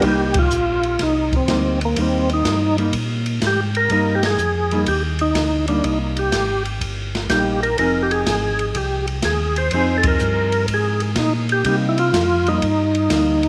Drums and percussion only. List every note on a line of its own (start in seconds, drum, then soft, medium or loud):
0.02 kick soft
0.02 ride medium
0.34 kick medium
0.34 ride medium
0.50 hi-hat pedal medium
0.83 ride soft
0.99 kick soft
0.99 snare soft
0.99 ride medium
1.32 kick soft
1.32 ride soft
1.48 kick soft
1.48 snare medium
1.48 hi-hat pedal medium
1.48 ride medium
1.81 ride soft
1.96 kick soft
1.96 ride medium
2.29 ride soft
2.45 kick soft
2.45 snare medium
2.45 hi-hat pedal medium
2.45 ride medium
2.78 ride soft
2.93 kick soft
2.93 ride medium
3.26 ride soft
3.41 kick soft
3.41 snare medium
3.41 hi-hat pedal soft
3.41 ride medium
3.75 ride soft
3.90 kick soft
3.90 ride soft
4.23 snare medium
4.23 ride medium
4.38 hi-hat pedal medium
4.71 ride soft
4.86 kick soft
4.86 ride medium
5.19 ride soft
5.35 kick soft
5.35 snare medium
5.35 hi-hat pedal soft
5.35 ride medium
5.68 ride soft
5.84 kick soft
5.84 ride medium
6.17 ride soft
6.32 kick soft
6.32 snare medium
6.32 hi-hat pedal medium
6.32 ride medium
6.65 ride soft
6.81 kick soft
6.81 ride medium
7.15 snare soft
7.15 ride soft
7.30 kick soft
7.30 snare medium
7.30 hi-hat pedal medium
7.30 ride medium
7.63 ride soft
7.78 kick soft
7.78 ride medium
8.11 ride soft
8.26 kick soft
8.26 snare medium
8.26 hi-hat pedal medium
8.26 ride medium
8.59 ride soft
8.75 kick soft
8.75 ride medium
9.07 ride soft
9.22 kick soft
9.22 snare medium
9.22 hi-hat pedal soft
9.22 ride medium
9.56 ride soft
9.71 kick soft
9.71 ride medium
10.03 kick medium
10.03 ride medium
10.19 hi-hat pedal medium
10.52 ride soft
10.68 kick soft
10.68 ride medium
11.00 ride soft
11.16 kick soft
11.16 snare medium
11.16 hi-hat pedal medium
11.16 ride medium
11.49 ride soft
11.65 kick soft
11.65 ride medium
11.98 ride soft
12.13 kick soft
12.13 snare medium
12.13 hi-hat pedal medium
12.13 ride medium
12.47 ride soft
12.62 kick soft
12.62 ride medium
12.95 ride soft
13.10 kick soft
13.10 snare medium
13.10 hi-hat pedal medium
13.10 ride medium
13.43 ride soft